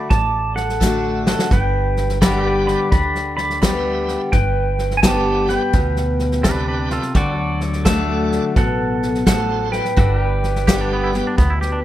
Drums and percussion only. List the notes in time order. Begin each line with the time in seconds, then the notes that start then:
0.11 kick, snare
0.57 snare
0.69 snare
0.81 kick, snare, hi-hat pedal
1.27 snare
1.39 snare
1.51 kick, snare
1.97 snare
2.09 snare
2.22 kick, snare, hi-hat pedal
2.68 snare
2.92 kick, snare
3.15 snare
3.38 snare
3.50 snare
3.62 kick, snare, hi-hat pedal
4.08 snare
4.33 kick, snare
4.79 snare
4.91 snare
5.03 kick, snare, hi-hat pedal
5.49 snare
5.73 kick, snare
5.96 snare
6.19 snare
6.32 snare
6.44 kick, snare, hi-hat pedal
6.90 snare
7.02 snare
7.15 kick, snare
7.61 snare
7.73 snare
7.86 kick, snare, hi-hat pedal
8.32 snare
8.56 kick, snare
9.03 snare
9.15 snare
9.27 kick, snare, hi-hat pedal
9.73 snare
9.85 snare
9.97 kick, snare
10.43 snare
10.56 snare
10.68 kick, snare, hi-hat pedal
11.14 snare
11.38 kick, snare
11.62 snare